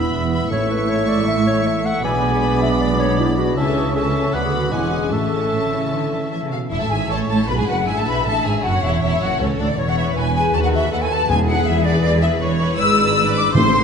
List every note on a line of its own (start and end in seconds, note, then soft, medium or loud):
0.00 0.53 E3 medium
0.00 0.32 B3 soft
0.00 0.49 B3 medium
0.00 0.49 B3 soft
0.00 0.53 B3 soft
0.00 0.14 E4 medium
0.00 0.30 E4 soft
0.00 0.49 E4 medium
0.00 0.12 B4 soft
0.00 0.31 E5 soft
0.00 0.49 E5 medium
0.00 0.31 B5 soft
0.00 0.49 B5 medium
0.14 0.47 E1 medium
0.14 0.47 E2 medium
0.14 0.53 B4 soft
0.32 0.51 B3 soft
0.32 1.07 E4 soft
0.32 0.49 E5 medium
0.32 0.51 B5 medium
0.50 2.00 A1 medium
0.50 2.05 A2 medium
0.50 1.04 A2 medium
0.50 2.00 A2 medium
0.50 2.00 A3 medium
0.50 1.87 A3 medium
0.50 1.87 E4 medium
0.50 0.69 C#5 medium
0.50 1.99 E5 medium
0.50 2.00 E5 medium
0.50 2.00 C#6 medium
0.50 1.73 C#6 medium
0.70 1.45 A3 medium
0.70 0.90 B4 medium
0.89 1.10 C#5 medium
0.89 1.64 C#5 medium
1.08 1.84 E4 soft
1.08 1.27 D5 medium
1.27 2.05 E3 soft
1.27 1.36 E5 medium
1.46 2.05 A3 soft
1.46 1.69 C#5 medium
1.65 2.05 C#5 medium
1.65 1.87 E5 medium
1.85 2.05 E4 soft
1.85 2.04 F#5 medium
2.04 3.54 B1 medium
2.04 2.79 B2 medium
2.04 3.54 B2 medium
2.04 3.54 G#3 medium
2.04 3.53 G#3 medium
2.04 3.54 B3 medium
2.04 3.57 D4 medium
2.04 3.53 D5 medium
2.04 3.40 D5 medium
2.04 2.61 G#5 loud
2.04 3.53 B5 medium
2.04 3.54 D6 medium
2.23 2.98 G#3 soft
2.42 3.17 B4 soft
2.61 3.36 D4 soft
2.61 2.71 E5 medium
2.80 3.59 B2 soft
2.80 2.99 D5 medium
2.99 3.59 G#3 soft
2.99 3.18 C#5 medium
3.18 3.40 E4 medium
3.18 3.58 B4 soft
3.37 3.58 D4 soft
3.37 3.60 F#4 medium
3.57 4.30 C#2 medium
3.57 4.35 C#3 medium
3.57 4.30 C#3 medium
3.57 4.33 E3 medium
3.57 3.93 C#4 medium
3.57 4.34 C#4 medium
3.57 3.93 C#4 medium
3.57 3.67 E4 medium
3.57 3.93 E5 medium
3.57 3.93 A5 medium
3.57 3.94 C#6 medium
3.68 3.76 A4 medium
3.76 4.36 C#4 soft
3.76 3.98 G#4 medium
3.95 4.35 C#4 soft
3.95 4.34 C#4 medium
3.95 4.36 A4 medium
3.95 4.14 A4 medium
3.95 4.34 E5 medium
3.95 4.34 A5 medium
3.95 4.34 C#6 medium
4.15 4.36 E4 soft
4.15 4.33 A4 medium
4.33 4.73 D2 medium
4.33 4.73 D3 medium
4.33 4.74 D3 soft
4.33 4.72 F#3 medium
4.33 4.71 B3 soft
4.33 4.72 B3 soft
4.33 4.73 B3 medium
4.33 4.44 B4 medium
4.33 4.72 F#5 soft
4.33 4.73 F#5 medium
4.33 4.73 B5 medium
4.33 4.72 D6 medium
4.45 4.55 G#4 medium
4.54 4.91 F#4 soft
4.54 4.72 F#4 medium
4.54 5.14 B4 soft
4.71 5.12 E1 soft
4.71 5.12 E2 medium
4.71 5.14 E3 medium
4.71 5.14 G#3 soft
4.71 5.12 G#3 soft
4.71 6.51 C#4 medium
4.71 5.11 C#4 soft
4.71 4.93 E4 medium
4.71 5.11 F#5 medium
4.71 5.12 F#5 medium
4.71 5.12 G#5 soft
4.71 5.12 D6 medium
4.92 5.14 F#4 soft
4.92 5.11 G#4 medium
4.92 5.14 G#4 soft
5.11 6.53 A1 medium
5.11 5.48 A2 soft
5.11 6.70 A2 soft
5.11 6.49 A3 soft
5.11 6.52 A3 soft
5.11 6.50 C#4 soft
5.11 6.29 A4 medium
5.11 6.49 E5 soft
5.11 6.30 E5 soft
5.11 6.53 A5 medium
5.11 5.99 C#6 soft
5.32 6.11 C#4 soft
5.52 5.56 A2 soft
5.62 5.72 D3 medium
5.72 5.92 C#3 soft
5.72 6.50 E4 soft
5.91 6.10 D3 medium
5.91 6.73 E3 soft
6.11 6.19 D3 medium
6.11 6.90 C#4 soft
6.30 6.42 E3 soft
6.30 7.08 A4 soft
6.30 6.50 E5 medium
6.30 6.40 E5 medium
6.42 6.52 C#3 soft
6.51 6.71 B2 soft
6.51 7.28 E4 soft
6.51 6.57 F5 medium
6.51 6.60 F5 medium
6.71 6.80 E1 medium
6.71 6.81 E2 medium
6.71 7.50 A2 medium
6.71 6.80 E4 medium
6.71 6.81 E5 medium
6.71 7.07 E5 medium
6.81 6.91 A2 medium
6.81 6.91 A4 medium
6.81 6.90 A5 medium
6.81 6.86 A5 medium
6.90 7.10 G#1 medium
6.90 7.10 G#2 medium
6.90 7.50 C#4 soft
6.90 7.10 G#4 medium
6.90 6.96 G#5 medium
6.90 7.10 G#5 medium
7.08 7.27 A1 medium
7.08 7.29 A2 medium
7.08 7.50 A4 soft
7.08 7.29 A4 medium
7.08 7.49 C#5 medium
7.08 7.15 A5 medium
7.08 7.19 A5 medium
7.28 7.48 A1 medium
7.28 7.48 A2 medium
7.28 7.85 E4 soft
7.28 7.49 A4 medium
7.28 7.35 A5 medium
7.28 7.49 A5 medium
7.47 7.58 B1 medium
7.47 8.27 G#2 medium
7.47 7.59 B2 medium
7.47 7.87 B4 medium
7.47 7.53 B4 medium
7.47 7.57 B5 medium
7.47 7.58 B5 medium
7.58 7.68 G#2 medium
7.58 7.68 G#4 medium
7.58 7.68 G#5 medium
7.67 7.87 F#1 medium
7.67 7.87 F#2 medium
7.67 8.05 D4 soft
7.67 7.76 F#4 medium
7.67 7.87 F#5 medium
7.67 7.86 F#5 medium
7.86 7.96 G#1 medium
7.86 7.97 G#2 medium
7.86 8.81 E4 soft
7.86 7.97 G#4 medium
7.86 8.62 E5 medium
7.86 7.96 G#5 medium
7.86 7.97 G#5 medium
7.97 8.06 A2 medium
7.97 8.07 A4 medium
7.97 8.07 A5 medium
8.05 8.25 B1 medium
8.05 8.26 B2 medium
8.05 8.27 D4 soft
8.05 8.25 B4 medium
8.05 8.25 B5 medium
8.05 8.26 B5 medium
8.24 8.45 A1 medium
8.24 9.79 A2 medium
8.24 8.45 A2 medium
8.24 8.44 A4 medium
8.24 8.45 A5 medium
8.44 8.52 G#1 medium
8.44 8.53 G#2 medium
8.44 9.19 C#4 soft
8.44 8.64 G#4 medium
8.44 8.64 G#5 medium
8.44 8.53 G#5 medium
8.63 8.83 F#1 medium
8.63 8.83 F#2 medium
8.63 8.83 F#4 medium
8.63 9.38 A4 medium
8.63 9.38 C#5 medium
8.63 8.83 F#5 medium
8.82 9.01 E1 medium
8.82 9.01 E2 medium
8.82 9.01 E4 medium
8.82 9.57 E4 soft
8.82 9.01 E5 medium
8.82 9.02 E5 medium
9.01 9.10 E1 medium
9.01 9.09 E2 medium
9.01 9.77 E3 soft
9.01 9.21 E4 medium
9.01 9.21 E5 medium
9.20 9.40 F#1 medium
9.20 9.39 F#2 medium
9.20 9.79 C#4 medium
9.20 9.40 F#4 medium
9.20 9.40 F#5 medium
9.39 9.47 C#2 medium
9.39 9.48 C#2 medium
9.39 9.59 C#4 medium
9.39 9.79 A4 soft
9.39 9.78 A4 medium
9.39 9.45 C#5 medium
9.39 9.59 C#5 medium
9.58 9.77 D2 medium
9.58 9.78 D2 medium
9.58 9.67 D4 medium
9.58 9.95 E4 medium
9.58 9.78 D5 medium
9.58 9.79 D5 medium
9.77 10.11 E1 medium
9.77 10.12 E2 medium
9.77 10.56 E3 medium
9.77 9.88 C#5 medium
9.77 10.16 C#5 medium
9.88 9.97 F#5 medium
9.97 10.55 E4 medium
9.97 10.35 B4 medium
9.97 10.16 E5 medium
9.97 10.06 E5 medium
10.15 10.50 E1 medium
10.15 10.49 E2 medium
10.15 10.91 B4 medium
10.15 10.54 B4 medium
10.15 10.33 G#5 medium
10.15 10.35 G#5 medium
10.34 10.55 G#4 medium
10.34 10.55 B4 medium
10.34 10.53 G#5 medium
10.34 10.44 G#5 medium
10.53 10.87 D#2 medium
10.53 11.31 D#3 medium
10.53 10.92 F#4 medium
10.53 10.73 B4 medium
10.53 10.57 A5 medium
10.53 10.60 A5 medium
10.64 10.67 F#5 medium
10.64 10.69 F#5 medium
10.72 12.02 B3 soft
10.72 11.10 B4 medium
10.72 10.92 E5 medium
10.91 11.25 D#2 medium
10.91 11.29 A4 medium
10.91 11.65 B4 medium
10.91 10.96 F#5 medium
10.91 11.02 F#5 medium
11.02 11.11 G#5 medium
11.10 11.31 F#4 medium
11.10 11.29 B4 medium
11.10 11.30 A5 medium
11.28 11.62 E1 medium
11.28 11.82 E2 medium
11.28 11.63 E2 medium
11.28 12.81 E3 medium
11.28 12.40 G#4 medium
11.28 11.34 G#5 medium
11.28 11.39 G#5 medium
11.47 11.83 E4 medium
11.47 11.84 B4 medium
11.47 11.66 F#5 medium
11.47 11.67 F#5 medium
11.66 11.99 E1 medium
11.66 12.00 E2 medium
11.66 12.40 B4 medium
11.66 11.85 E5 loud
11.66 11.86 E5 medium
11.84 12.21 E4 medium
11.84 12.22 B4 medium
11.84 12.00 D5 medium
11.84 12.03 D5 medium
12.01 12.37 E1 medium
12.01 12.37 E2 medium
12.01 13.56 B3 medium
12.01 12.21 D5 loud
12.01 12.12 D5 medium
12.21 12.60 E4 medium
12.21 12.58 B4 medium
12.21 12.41 E5 medium
12.21 12.30 E5 medium
12.41 12.75 E1 medium
12.41 12.75 E2 medium
12.41 13.16 B4 medium
12.41 12.78 C#5 medium
12.60 13.34 E4 medium
12.60 12.79 B4 medium
12.78 13.51 G#1 medium
12.78 13.51 G#2 medium
12.78 13.57 G#2 medium
12.78 13.16 B4 medium
12.78 13.50 D5 medium
12.78 13.31 E6 loud
12.98 13.56 D4 medium
13.17 13.54 B4 medium
13.17 13.56 B4 medium
13.35 13.84 E4 medium
13.35 13.54 D6 medium
13.35 13.55 D6 loud
13.54 13.84 A1 medium
13.54 13.84 A2 medium
13.54 13.84 C5 medium
13.54 13.84 C6 medium
13.54 13.84 C6 loud
13.73 13.84 C4 medium